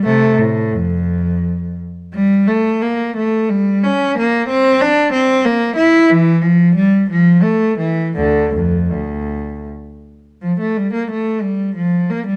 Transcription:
X:1
M:3/4
L:1/16
Q:1/4=88
K:F
V:1 name="Cello" clef=bass
[C,A,]2 A,,2 F,,6 z2 | [K:Dm] G,2 A,2 B,2 A,2 G,2 ^C2 | B,2 C2 D2 C2 B,2 E2 | E,2 F,2 G,2 F,2 A,2 E,2 |
[D,,D,]2 F,,2 D,,4 z4 | [K:Gdor] F, A, G, B, A,2 G,2 F,2 B, G, |]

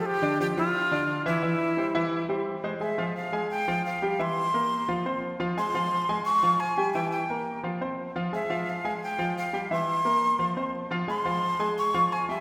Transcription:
X:1
M:4/4
L:1/8
Q:1/4=174
K:Fm
V:1 name="Flute"
G2 G F4 =E- | =E6 z2 | =e2 f2 g2 f2 | c'6 z2 |
c'4 d'2 a2 | g g3 z4 | =e2 f2 g2 f2 | c'6 z2 |
c'4 d'2 a =e |]
V:2 name="Grand piano"
[F,FG] [=D,=D=d] [F,FG] [F,FG]2 [D,Dd]2 [=E,=E=e] | [=E,=E=e]2 [G,Gc] [E,Ee]2 [G,Gc]2 [A,Ac] | [A,Aa] [F,Ff]2 [A,Aa]2 [F,Ff]2 [G,Gg] | [=E,=E=e]2 [B,Bb]2 [F,Ff] [Ccc']2 [F,Ff] |
[A,Aa] [F,Ff]2 [A,Aa]2 [F,Ff]2 [G,Gg] | [=E,=E=e]2 [B,Bb]2 [F,Ff] [Ccc']2 [F,Ff] | [A,Aa] [F,Ff]2 [A,Aa]2 [F,Ff]2 [G,Gg] | [=E,=E=e]2 [B,Bb]2 [F,Ff] [Ccc']2 [F,Ff] |
[A,Aa] [F,Ff]2 [A,Aa]2 [F,Ff]2 [G,Gg] |]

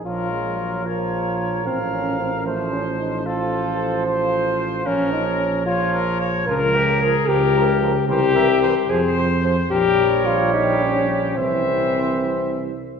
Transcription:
X:1
M:6/8
L:1/16
Q:3/8=74
K:Bbm
V:1 name="Trumpet"
B6 d6 | f6 c6 | =A6 c6 | B6 d2 B2 d2 |
[K:Cphr] F2 G2 A2 B4 z2 | c2 =e2 c2 c6 | B6 G6 | =e8- e z3 |]
V:2 name="Flugelhorn"
d6 B6- | B6 c6 | c12 | d6 d6 |
[K:Cphr] B2 B2 B2 B2 B2 B2 | B2 B2 B2 c2 c2 c2 | d12 | c8- c2 z2 |]
V:3 name="French horn"
F6 F6 | C2 D2 C2 =A,2 D2 E2 | F6 F6 | D2 E2 D2 F4 z2 |
[K:Cphr] B6 G6 | G6 A2 z4 | G4 F2 E2 D2 D2 | C8- C2 z2 |]
V:4 name="Trombone" clef=bass
F,2 A,2 G,2 F,6 | F,6 F,6 | F,12 | F,6 F,6 |
[K:Cphr] F,2 F,2 F,2 F,2 F,2 F,2 | =E,2 E,2 E,2 F,2 F,2 F,2 | G,12 | =E,8- E,2 z2 |]
V:5 name="Tuba" clef=bass
B,,,12 | =A,,,12- | =A,,,12 | B,,,12 |
[K:Cphr] D,,6 D,,6 | C,,6 F,,6 | B,,,12 | C,,8- C,,2 z2 |]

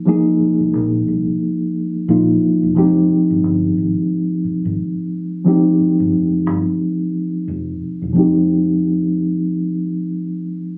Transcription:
X:1
M:4/4
L:1/16
Q:"Swing 16ths" 1/4=89
K:Fm
V:1 name="Reed electric piano"
[F,A,B,EA]12 [F,A,B,EF]4 | [F,A,CEG]16 | [F,A,CEG]16 | [F,A,CEG]16 |]
V:2 name="Fingered electric bass" clef=bass
z3 C,, B,,,2 C,, z4 z B,,,2 z =E,,, | F,,,2 z G,,, G,,,2 A,,, z4 A,,, z4 | z3 G,,, F,,,2 G,,, z4 z F,,,2 z =E,,, | F,,,16 |]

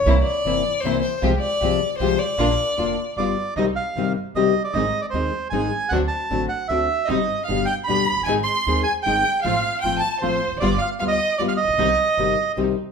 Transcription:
X:1
M:3/4
L:1/16
Q:1/4=154
K:Fdor
V:1 name="Bandoneon"
z12 | z12 | z8 d4 | [K:Cm] e2 f4 z2 e3 d |
e3 d c4 a4 | ^f2 =a4 f2 =e4 | e4 f2 g2 =b4 | a2 c'4 a2 g4 |
f4 g2 =a2 c4 | d2 f2 f e3 d f e2- | e8 z4 |]
V:2 name="Violin"
z2 d6 c2 c2 | z2 d6 c2 d2- | d8 z4 | [K:Cm] z12 |
z12 | z12 | z4 f2 g2 =b4 | a2 c'4 a2 g4 |
f4 g2 =a2 c4 | d2 f2 f e3 d f e2- | e8 z4 |]
V:3 name="String section"
[B,C=E]2 z2 [B,CE]2 z2 [B,CE]2 z2 | [A,FG]2 z2 [A,FG]2 z2 [A,FG]2 z2 | [B,DF]2 z2 [B,DF]2 z2 [G,=B,F]2 z2 | [K:Cm] [G,CE]2 z2 [G,CE]2 z2 [G,CE]2 z2 |
[A,CE]2 z2 [A,CE]2 z2 [A,CE]2 z2 | [^F,CD]2 z2 [F,CD]2 z2 [F,CD]2 z2 | [G,CE]2 z2 [G,=B,D]2 z2 [G,B,D]2 z2 | [A,CE]2 z2 [A,CE]2 z2 [A,CE]2 z2 |
[=A,CF]2 z2 [A,CF]2 z2 [A,CF]2 z2 | [G,=B,F]2 z2 [G,B,F]2 z2 [G,B,F]2 z2 | [G,CE]2 z2 [G,CE]2 z2 [G,CE]2 z2 |]
V:4 name="Nylon-string guitar"
[C,=E,B,C=E]2 z2 [C,E,B,CE]2 z2 [C,E,B,CE]2 z2 | [C,F,A,CG]2 z2 [C,F,A,CG]2 z2 [C,F,A,CG]2 z2 | [D,B,DF]2 z2 [D,B,DF]2 z2 [G,=B,F]2 z2 | [K:Cm] [C,E,G,CG]2 z2 [C,E,G,CG]2 z2 [C,E,G,CG]2 z2 |
[E,A,CEA]2 z2 [E,A,CEA]2 z2 [E,A,CEA]2 z2 | [D,=A,C^F]2 z2 [D,A,CF]2 z2 [D,A,CF]2 z2 | [C,G,CEG]2 z2 [=B,,D,G,=B,G]2 z2 [B,,D,G,B,G]2 z2 | [E,A,CEA]2 z2 [E,A,CEA]2 z2 [E,A,CEA]2 z2 |
[F,=A,CF]2 z2 [F,A,CF]2 z2 [F,A,CF]2 z2 | [G,=B,F]2 z2 [G,B,F]2 z2 [G,B,F]2 z2 | [C,E,G,CG]2 z2 [C,E,G,CG]2 z2 [C,E,G,CG]2 z2 |]
V:5 name="Upright bass" clef=bass
C,,3/2 z2 z/2 G,,,3/2 z2 z/2 C,,3/2 z2 z/2 | C,,3/2 z2 z/2 C,,3/2 z2 z/2 C,,3/2 z2 z/2 | B,,,3/2 z2 z/2 F,,,3/2 z2 z/2 G,,,3/2 z2 z/2 | [K:Cm] C,,3/2 z2 z/2 G,,,3/2 z2 z/2 C,,3/2 z2 z/2 |
A,,,3/2 z2 z/2 E,,3/2 z2 z/2 A,,,3/2 z2 z/2 | D,,3/2 z2 z/2 =A,,,3/2 z2 z/2 D,,3/2 z2 z/2 | G,,,3/2 z2 z/2 G,,,3/2 z2 z/2 D,,3/2 z F,,,/2 ^F,,,/2 G,,,/2 | A,,,3/2 z2 z/2 E,,3/2 z2 z/2 A,,,3/2 z2 z/2 |
=A,,,3/2 z2 z/2 A,,,3/2 z2 z/2 A,,,3/2 z =E,,,/2 F,,,/2 ^F,,,/2 | G,,,3/2 z2 z/2 D,,3/2 z2 z/2 G,,,3/2 z =A,,,/2 B,,,/2 =B,,,/2 | C,,3/2 z2 z/2 G,,,3/2 z2 z/2 C,,3/2 z2 z/2 |]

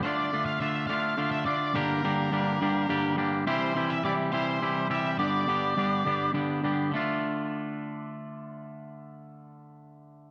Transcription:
X:1
M:6/8
L:1/16
Q:3/8=70
K:Dm
V:1 name="Lead electric guitar"
d3 f e2 f3 e d2 | B8- B2 z2 | c3 e d2 c4 e2 | d8 z4 |
z12 | z12 |]
V:2 name="Clean electric guitar"
[D,A,DF]2 [D,A,DF]2 [D,A,DF]2 [D,A,DF]2 [D,A,DF]2 [D,A,DF]2 | [G,,D,G,B,DG]2 [G,,D,G,B,DG]2 [G,,D,G,B,DG]2 [G,,D,G,B,DG]2 [G,,D,G,B,DG]2 [G,,D,G,B,DG]2 | [C,E,G,EG]2 [C,E,G,EG]2 [C,E,G,EG]2 [C,E,G,EG]2 [C,E,G,EG]2 [C,E,G,EG]2 | [G,,D,G,=B,DG]2 [G,,D,G,B,DG]2 [G,,D,G,B,DG]2 [G,,D,G,B,DG]2 [G,,D,G,B,DG]2 [G,,D,G,B,DG]2 |
[D,A,DF]12- | [D,A,DF]12 |]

